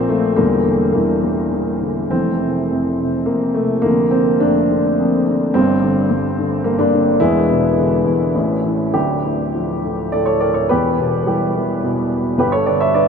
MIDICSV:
0, 0, Header, 1, 2, 480
1, 0, Start_track
1, 0, Tempo, 575816
1, 318, Time_signature, 3, 2, 24, 8
1, 3684, Tempo, 557621
1, 6564, Tempo, 590551
1, 8484, Tempo, 563910
1, 10997, End_track
2, 0, Start_track
2, 0, Title_t, "Grand piano"
2, 0, Program_c, 0, 0
2, 0, Control_c, 0, 64, 127
2, 0, Note_on_c, 0, 34, 58
2, 0, Note_on_c, 0, 46, 55
2, 0, Note_on_c, 0, 53, 53
2, 0, Note_on_c, 0, 58, 75
2, 0, Note_on_c, 0, 60, 104
2, 74, Note_on_c, 0, 57, 80
2, 83, Note_off_c, 0, 53, 0
2, 83, Note_on_c, 0, 53, 48
2, 86, Note_off_c, 0, 58, 0
2, 286, Note_off_c, 0, 34, 0
2, 297, Note_off_c, 0, 57, 0
2, 304, Note_on_c, 0, 58, 81
2, 305, Note_off_c, 0, 46, 0
2, 311, Note_on_c, 0, 55, 64
2, 312, Note_off_c, 0, 53, 0
2, 312, Note_on_c, 0, 50, 59
2, 314, Note_on_c, 0, 40, 58
2, 317, Note_on_c, 0, 28, 55
2, 330, Control_c, 0, 64, 0
2, 338, Note_off_c, 0, 60, 0
2, 468, Control_c, 0, 64, 127
2, 538, Note_off_c, 0, 50, 0
2, 551, Note_on_c, 0, 50, 43
2, 759, Note_off_c, 0, 58, 0
2, 772, Note_on_c, 0, 58, 63
2, 774, Note_off_c, 0, 50, 0
2, 775, Note_off_c, 0, 55, 0
2, 787, Note_on_c, 0, 50, 40
2, 788, Note_on_c, 0, 55, 43
2, 795, Note_on_c, 0, 52, 50
2, 1020, Note_off_c, 0, 55, 0
2, 1032, Note_on_c, 0, 55, 47
2, 1260, Note_off_c, 0, 52, 0
2, 1273, Note_on_c, 0, 52, 51
2, 1475, Note_off_c, 0, 58, 0
2, 1483, Note_off_c, 0, 50, 0
2, 1514, Note_on_c, 0, 50, 41
2, 1731, Note_off_c, 0, 40, 0
2, 1732, Note_off_c, 0, 28, 0
2, 1745, Note_off_c, 0, 55, 0
2, 1749, Note_off_c, 0, 52, 0
2, 1755, Note_on_c, 0, 60, 71
2, 1756, Note_off_c, 0, 50, 0
2, 1761, Note_on_c, 0, 52, 54
2, 1762, Note_on_c, 0, 57, 51
2, 1765, Note_on_c, 0, 29, 52
2, 1765, Note_on_c, 0, 41, 50
2, 1777, Control_c, 0, 64, 0
2, 1900, Control_c, 0, 64, 127
2, 2013, Note_on_c, 0, 48, 42
2, 2248, Note_off_c, 0, 41, 0
2, 2261, Note_on_c, 0, 41, 46
2, 2488, Note_off_c, 0, 48, 0
2, 2501, Note_on_c, 0, 48, 51
2, 2699, Note_off_c, 0, 52, 0
2, 2700, Note_off_c, 0, 57, 0
2, 2717, Note_on_c, 0, 58, 70
2, 2725, Note_off_c, 0, 41, 0
2, 2737, Note_on_c, 0, 41, 50
2, 2759, Note_off_c, 0, 60, 0
2, 2954, Note_on_c, 0, 57, 75
2, 2960, Note_off_c, 0, 48, 0
2, 2970, Note_off_c, 0, 58, 0
2, 2973, Note_on_c, 0, 48, 46
2, 3175, Note_off_c, 0, 29, 0
2, 3182, Note_off_c, 0, 57, 0
2, 3183, Note_on_c, 0, 58, 83
2, 3195, Note_off_c, 0, 41, 0
2, 3201, Note_on_c, 0, 50, 63
2, 3202, Note_off_c, 0, 48, 0
2, 3216, Note_on_c, 0, 29, 61
2, 3217, Note_on_c, 0, 41, 60
2, 3219, Control_c, 0, 64, 0
2, 3360, Control_c, 0, 64, 127
2, 3415, Note_off_c, 0, 58, 0
2, 3426, Note_on_c, 0, 60, 72
2, 3440, Note_off_c, 0, 50, 0
2, 3452, Note_on_c, 0, 50, 49
2, 3656, Note_off_c, 0, 60, 0
2, 3670, Note_on_c, 0, 62, 81
2, 3679, Note_off_c, 0, 41, 0
2, 3683, Note_on_c, 0, 57, 56
2, 3688, Note_on_c, 0, 58, 53
2, 3692, Note_on_c, 0, 41, 48
2, 3921, Note_off_c, 0, 50, 0
2, 3934, Note_on_c, 0, 50, 57
2, 4163, Note_off_c, 0, 41, 0
2, 4176, Note_on_c, 0, 41, 56
2, 4372, Note_off_c, 0, 62, 0
2, 4378, Note_off_c, 0, 57, 0
2, 4381, Note_off_c, 0, 58, 0
2, 4410, Note_off_c, 0, 50, 0
2, 4423, Note_on_c, 0, 50, 52
2, 4620, Note_off_c, 0, 29, 0
2, 4639, Note_off_c, 0, 41, 0
2, 4648, Note_on_c, 0, 60, 89
2, 4649, Note_off_c, 0, 50, 0
2, 4659, Note_on_c, 0, 43, 68
2, 4661, Control_c, 0, 64, 0
2, 4661, Note_on_c, 0, 31, 61
2, 4666, Note_on_c, 0, 55, 64
2, 4795, Control_c, 0, 64, 127
2, 4897, Note_on_c, 0, 50, 53
2, 5123, Note_off_c, 0, 43, 0
2, 5136, Note_on_c, 0, 43, 52
2, 5362, Note_off_c, 0, 50, 0
2, 5375, Note_on_c, 0, 50, 55
2, 5577, Note_off_c, 0, 55, 0
2, 5598, Note_on_c, 0, 58, 78
2, 5599, Note_off_c, 0, 43, 0
2, 5612, Note_on_c, 0, 43, 55
2, 5631, Note_off_c, 0, 60, 0
2, 5711, Note_off_c, 0, 58, 0
2, 5722, Note_on_c, 0, 62, 83
2, 5739, Note_on_c, 0, 58, 64
2, 5740, Note_on_c, 0, 55, 61
2, 5833, Note_off_c, 0, 50, 0
2, 5846, Note_on_c, 0, 50, 46
2, 6049, Note_off_c, 0, 31, 0
2, 6062, Note_off_c, 0, 55, 0
2, 6062, Note_off_c, 0, 58, 0
2, 6068, Note_off_c, 0, 43, 0
2, 6074, Note_off_c, 0, 50, 0
2, 6077, Note_on_c, 0, 64, 91
2, 6086, Note_on_c, 0, 40, 61
2, 6088, Note_on_c, 0, 59, 65
2, 6089, Note_off_c, 0, 62, 0
2, 6089, Control_c, 0, 64, 0
2, 6089, Note_on_c, 0, 28, 55
2, 6090, Note_on_c, 0, 56, 69
2, 6250, Control_c, 0, 64, 127
2, 6328, Note_on_c, 0, 47, 45
2, 6570, Note_on_c, 0, 50, 50
2, 6788, Note_off_c, 0, 40, 0
2, 6800, Note_on_c, 0, 40, 50
2, 7007, Note_off_c, 0, 64, 0
2, 7012, Note_off_c, 0, 59, 0
2, 7013, Note_off_c, 0, 28, 0
2, 7013, Note_off_c, 0, 56, 0
2, 7024, Note_off_c, 0, 47, 0
2, 7029, Note_off_c, 0, 50, 0
2, 7034, Note_off_c, 0, 40, 0
2, 7042, Note_on_c, 0, 33, 57
2, 7042, Note_on_c, 0, 45, 57
2, 7050, Control_c, 0, 64, 0
2, 7190, Control_c, 0, 64, 127
2, 7287, Note_on_c, 0, 52, 39
2, 7493, Note_off_c, 0, 33, 0
2, 7511, Note_off_c, 0, 45, 0
2, 7516, Note_on_c, 0, 67, 67
2, 7520, Note_off_c, 0, 52, 0
2, 7526, Note_on_c, 0, 26, 44
2, 7526, Note_on_c, 0, 38, 52
2, 7532, Note_on_c, 0, 62, 52
2, 7535, Control_c, 0, 64, 0
2, 7698, Control_c, 0, 64, 127
2, 7768, Note_on_c, 0, 45, 38
2, 8011, Note_on_c, 0, 53, 43
2, 8255, Note_on_c, 0, 50, 43
2, 8455, Note_off_c, 0, 62, 0
2, 8476, Note_off_c, 0, 45, 0
2, 8480, Note_on_c, 0, 74, 74
2, 8489, Note_on_c, 0, 45, 43
2, 8491, Note_on_c, 0, 69, 56
2, 8509, Note_off_c, 0, 67, 0
2, 8592, Note_off_c, 0, 69, 0
2, 8595, Note_on_c, 0, 73, 72
2, 8605, Note_on_c, 0, 69, 55
2, 8607, Note_off_c, 0, 74, 0
2, 8718, Note_off_c, 0, 69, 0
2, 8719, Note_on_c, 0, 74, 76
2, 8726, Note_off_c, 0, 73, 0
2, 8728, Note_on_c, 0, 70, 63
2, 8837, Note_on_c, 0, 73, 64
2, 8841, Note_off_c, 0, 70, 0
2, 8849, Note_off_c, 0, 74, 0
2, 8850, Note_on_c, 0, 69, 54
2, 8938, Note_off_c, 0, 26, 0
2, 8939, Note_off_c, 0, 38, 0
2, 8943, Note_off_c, 0, 53, 0
2, 8953, Note_off_c, 0, 50, 0
2, 8960, Note_off_c, 0, 45, 0
2, 8964, Note_off_c, 0, 69, 0
2, 8965, Note_on_c, 0, 71, 87
2, 8970, Note_off_c, 0, 73, 0
2, 8975, Note_on_c, 0, 28, 53
2, 8976, Note_on_c, 0, 67, 64
2, 8977, Note_on_c, 0, 40, 56
2, 8982, Control_c, 0, 64, 0
2, 9144, Control_c, 0, 64, 127
2, 9218, Note_on_c, 0, 47, 45
2, 9426, Note_off_c, 0, 67, 0
2, 9454, Note_on_c, 0, 55, 47
2, 9459, Note_on_c, 0, 67, 56
2, 9469, Note_off_c, 0, 71, 0
2, 9474, Note_on_c, 0, 64, 44
2, 9698, Note_on_c, 0, 52, 50
2, 9924, Note_off_c, 0, 47, 0
2, 9937, Note_on_c, 0, 47, 50
2, 10135, Note_off_c, 0, 67, 0
2, 10143, Note_off_c, 0, 64, 0
2, 10374, Note_off_c, 0, 28, 0
2, 10375, Note_off_c, 0, 40, 0
2, 10376, Note_off_c, 0, 55, 0
2, 10386, Note_off_c, 0, 52, 0
2, 10394, Note_off_c, 0, 47, 0
2, 10403, Note_on_c, 0, 43, 62
2, 10406, Note_on_c, 0, 31, 55
2, 10408, Note_on_c, 0, 71, 80
2, 10416, Note_on_c, 0, 67, 64
2, 10418, Control_c, 0, 64, 0
2, 10522, Note_off_c, 0, 67, 0
2, 10522, Note_on_c, 0, 73, 82
2, 10529, Note_on_c, 0, 69, 61
2, 10530, Note_off_c, 0, 71, 0
2, 10566, Control_c, 0, 64, 127
2, 10638, Note_off_c, 0, 69, 0
2, 10643, Note_on_c, 0, 74, 70
2, 10645, Note_on_c, 0, 50, 47
2, 10645, Note_on_c, 0, 71, 56
2, 10647, Note_off_c, 0, 73, 0
2, 10756, Note_off_c, 0, 71, 0
2, 10763, Note_on_c, 0, 76, 77
2, 10766, Note_on_c, 0, 73, 64
2, 10767, Note_off_c, 0, 74, 0
2, 10875, Note_off_c, 0, 76, 0
2, 10876, Note_off_c, 0, 73, 0
2, 10882, Note_on_c, 0, 74, 74
2, 10887, Note_on_c, 0, 62, 49
2, 10890, Note_on_c, 0, 71, 59
2, 10997, Note_off_c, 0, 31, 0
2, 10997, Note_off_c, 0, 43, 0
2, 10997, Note_off_c, 0, 50, 0
2, 10997, Note_off_c, 0, 62, 0
2, 10997, Note_off_c, 0, 71, 0
2, 10997, Note_off_c, 0, 74, 0
2, 10997, End_track
0, 0, End_of_file